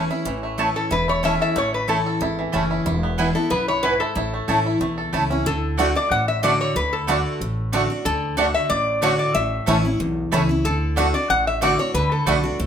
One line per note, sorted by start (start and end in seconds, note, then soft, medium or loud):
0.00 0.23 E2 medium
0.00 0.26 E3 medium
0.00 0.43 A3 medium
0.00 0.10 C#4 medium
0.00 1.23 C#4 medium
0.00 0.10 E4 medium
0.00 0.76 A4 medium
0.10 0.26 C#4 soft
0.10 0.25 E4 medium
0.10 0.59 E4 medium
0.25 0.72 A1 medium
0.25 0.88 A2 medium
0.25 1.66 E3 medium
0.43 0.88 A3 medium
0.58 0.89 E3 medium
0.58 0.68 A3 loud
0.58 0.89 A3 medium
0.58 0.90 C#4 medium
0.58 0.68 E4 loud
0.58 0.91 E4 medium
0.58 0.90 E4 medium
0.58 0.68 C#5 loud
0.58 0.68 A5 loud
0.76 0.92 A4 medium
0.76 1.21 A4 medium
0.91 1.37 E1 medium
0.91 1.53 E2 medium
0.91 2.21 E4 medium
0.91 1.07 B4 loud
1.08 1.53 A3 medium
1.08 1.24 C#5 medium
1.23 1.54 E3 medium
1.23 1.33 A3 medium
1.23 1.54 A3 medium
1.23 1.70 C#4 medium
1.23 1.55 C#4 medium
1.23 1.33 E4 medium
1.23 1.55 E4 medium
1.23 1.33 C#5 loud
1.23 1.40 E5 loud
1.23 1.33 A5 loud
1.41 1.86 A4 medium
1.41 1.57 E5 loud
1.56 2.02 A1 medium
1.56 2.18 A2 medium
1.56 1.88 A3 medium
1.56 1.74 C#5 loud
1.74 1.89 B4 medium
1.88 2.19 E3 medium
1.88 1.98 A3 medium
1.88 2.19 A3 medium
1.88 2.35 A3 medium
1.88 2.20 C#4 medium
1.88 1.98 E4 medium
1.88 2.20 E4 medium
1.88 2.71 A4 medium
1.88 1.98 C#5 medium
1.88 1.98 A5 loud
2.06 2.51 A4 medium
2.21 2.49 G#1 medium
2.21 2.83 E2 medium
2.21 2.70 E4 medium
2.39 3.79 E3 medium
2.52 2.81 F#1 medium
2.52 2.84 E3 medium
2.52 2.62 A3 medium
2.52 2.84 A3 medium
2.52 2.85 C#4 medium
2.52 2.86 C#4 medium
2.52 2.63 E4 medium
2.52 2.85 E4 medium
2.52 2.63 C#5 medium
2.52 2.63 A5 loud
2.71 2.86 E4 medium
2.86 3.32 E1 medium
2.86 3.48 E2 loud
2.86 3.19 E4 medium
3.03 3.48 B3 medium
3.18 3.35 E3 medium
3.18 3.35 G#3 medium
3.18 3.28 B3 loud
3.18 3.35 B3 medium
3.18 3.28 E4 loud
3.18 3.35 E4 medium
3.18 3.34 E4 medium
3.18 3.28 B4 loud
3.18 3.28 G#5 loud
3.35 3.51 B3 medium
3.35 3.50 E4 medium
3.35 3.67 E4 medium
3.35 3.49 A4 medium
3.50 3.97 B1 medium
3.50 3.82 F#2 medium
3.50 3.97 B3 medium
3.50 3.68 B4 loud
3.68 3.83 E4 medium
3.68 3.84 C#5 loud
3.83 4.14 G#2 medium
3.83 3.93 B3 medium
3.83 3.93 E4 medium
3.83 4.00 E4 medium
3.83 3.99 B4 loud
3.83 3.93 B4 medium
3.83 3.93 G#5 loud
4.00 4.16 E4 medium
4.00 5.26 A4 medium
4.15 4.39 A1 medium
4.15 4.78 A2 medium
4.15 4.62 E4 medium
4.34 4.78 A3 medium
4.48 4.76 A1 medium
4.48 4.79 E3 medium
4.48 4.58 A3 medium
4.48 4.79 A3 medium
4.48 4.80 C#4 medium
4.48 4.58 E4 medium
4.48 4.80 E4 medium
4.48 4.95 A4 medium
4.48 4.58 C#5 loud
4.48 4.58 A5 medium
4.66 5.11 E4 soft
4.80 5.08 B1 medium
4.80 5.43 E2 medium
4.80 5.27 A3 medium
4.98 5.43 A4 medium
5.13 5.41 C#2 medium
5.13 5.30 E3 medium
5.13 5.22 A3 medium
5.13 5.30 A3 medium
5.13 5.30 C#4 medium
5.13 5.23 E4 medium
5.13 5.46 E4 medium
5.13 5.29 E4 medium
5.13 5.23 C#5 medium
5.13 5.23 A5 loud
5.30 5.46 C#4 medium
5.30 5.46 C#4 soft
5.30 5.45 E4 medium
5.46 5.92 D2 medium
5.46 5.77 D3 loud
5.46 5.97 A4 medium
5.77 5.95 D3 medium
5.77 5.87 A3 medium
5.77 5.86 A3 medium
5.77 5.95 A3 medium
5.77 5.86 D4 medium
5.77 5.95 D4 loud
5.77 5.87 F#4 loud
5.77 5.86 F#4 medium
5.77 5.94 F#4 loud
5.77 5.88 D5 loud
5.77 5.88 F#5 loud
5.95 6.11 D4 medium
5.95 6.10 F#4 medium
5.95 6.12 D5 loud
6.11 6.57 A1 medium
6.11 6.73 A2 medium
6.11 6.28 F#5 loud
6.28 6.43 E5 medium
6.43 6.74 D3 medium
6.43 6.52 A3 loud
6.43 6.74 A3 medium
6.43 6.51 A3 medium
6.43 6.74 D4 medium
6.43 6.51 D4 medium
6.43 6.53 F#4 loud
6.43 6.75 F#4 loud
6.43 6.51 F#4 medium
6.43 6.59 D5 loud
6.43 6.53 D5 medium
6.43 6.53 F#5 medium
6.61 6.75 C#5 medium
6.76 7.22 D2 medium
6.76 7.07 D3 loud
6.76 6.93 B4 medium
6.93 7.54 A4 medium
7.07 7.39 D3 medium
7.07 7.17 A3 loud
7.07 7.16 A3 medium
7.07 7.39 A3 medium
7.07 7.39 D4 medium
7.07 7.16 D4 medium
7.07 7.17 F#4 medium
7.07 7.16 F#4 medium
7.07 7.40 F#4 loud
7.07 7.17 D5 loud
7.07 7.18 F#5 loud
7.41 7.87 A1 medium
7.41 8.03 A2 medium
7.73 7.89 D3 medium
7.73 7.82 A3 medium
7.73 7.89 A3 loud
7.73 7.81 A3 medium
7.73 7.90 D4 loud
7.73 7.81 D4 medium
7.73 7.82 F#4 medium
7.73 7.89 F#4 medium
7.73 7.81 F#4 medium
7.73 7.83 D5 loud
7.73 7.83 F#5 medium
7.90 8.05 D4 soft
7.90 8.05 F#4 medium
8.05 8.52 D2 medium
8.05 8.36 D3 loud
8.05 8.35 A4 medium
8.37 8.68 D3 medium
8.37 8.47 A3 medium
8.37 8.69 A3 medium
8.37 8.46 A3 medium
8.37 8.69 D4 medium
8.37 8.46 D4 medium
8.37 8.47 F#4 loud
8.37 8.69 F#4 medium
8.37 8.46 F#4 medium
8.37 8.47 D5 loud
8.37 8.47 F#5 loud
8.54 8.69 E5 loud
8.70 9.16 A1 medium
8.70 9.32 A2 loud
8.70 9.00 D5 loud
9.02 9.33 D3 medium
9.02 9.12 A3 medium
9.02 9.34 A3 loud
9.02 9.11 A3 medium
9.02 9.34 D4 loud
9.02 9.11 D4 medium
9.02 9.12 F#4 loud
9.02 9.34 F#4 loud
9.02 9.11 F#4 medium
9.02 9.19 C#5 loud
9.02 9.12 D5 medium
9.02 9.12 F#5 loud
9.19 9.35 D5 medium
9.35 9.58 A1 medium
9.35 9.96 A2 medium
9.35 9.81 E5 medium
9.66 9.95 A1 medium
9.66 9.84 E3 medium
9.66 9.76 A3 loud
9.66 9.84 A3 loud
9.66 9.75 A3 medium
9.66 9.75 C#4 medium
9.66 9.84 C#4 loud
9.66 9.77 E4 medium
9.66 9.83 E4 loud
9.66 9.76 E4 medium
9.66 9.77 C#5 loud
9.66 9.77 A5 loud
9.85 10.00 C#4 soft
9.85 9.99 E4 medium
10.00 10.27 B1 medium
10.00 10.62 E2 medium
10.32 10.60 C#2 medium
10.32 10.49 E3 medium
10.32 10.41 A3 medium
10.32 10.40 A3 medium
10.32 10.49 A3 loud
10.32 10.40 C#4 medium
10.32 10.49 C#4 loud
10.32 10.42 E4 loud
10.32 10.40 E4 medium
10.32 10.48 E4 loud
10.32 10.42 C#5 loud
10.32 10.42 A5 medium
10.49 10.65 C#4 soft
10.49 10.64 E4 medium
10.64 11.11 D2 medium
10.64 10.96 D3 medium
10.64 11.11 A4 medium
10.96 11.13 D3 loud
10.96 11.06 A3 loud
10.96 11.05 A3 medium
10.96 11.14 A3 loud
10.96 11.05 D4 medium
10.96 11.14 D4 medium
10.96 11.06 F#4 loud
10.96 11.05 F#4 medium
10.96 11.13 F#4 loud
10.96 11.07 D5 medium
10.96 11.07 F#5 loud
11.14 11.30 D4 medium
11.14 11.29 F#4 medium
11.14 11.30 D5 loud
11.30 11.76 A1 medium
11.30 11.92 A2 medium
11.30 11.46 F#5 loud
11.47 11.62 E5 medium
11.61 11.78 D3 loud
11.61 11.71 A3 loud
11.61 11.79 A3 medium
11.61 11.70 A3 medium
11.61 11.79 D4 medium
11.61 11.70 D4 medium
11.61 11.71 F#4 medium
11.61 11.70 F#4 medium
11.61 11.78 F#4 loud
11.61 11.71 D5 loud
11.61 11.78 D5 loud
11.61 11.72 F#5 medium
11.79 11.95 D4 medium
11.79 11.94 F#4 medium
11.79 11.93 C#5 medium
11.94 12.17 D2 medium
11.94 12.25 D3 loud
11.94 12.11 B4 medium
12.12 12.66 A4 medium
12.26 12.54 B1 medium
12.26 12.43 D3 medium
12.26 12.36 A3 loud
12.26 12.43 A3 loud
12.26 12.35 A3 medium
12.26 12.44 D4 medium
12.26 12.35 D4 medium
12.26 12.36 F#4 loud
12.26 12.35 F#4 medium
12.26 12.42 F#4 loud
12.26 12.36 D5 loud
12.26 12.36 F#5 loud
12.44 12.59 D4 soft
12.44 12.58 F#4 medium
12.59 12.66 C#2 medium
12.59 12.66 A2 medium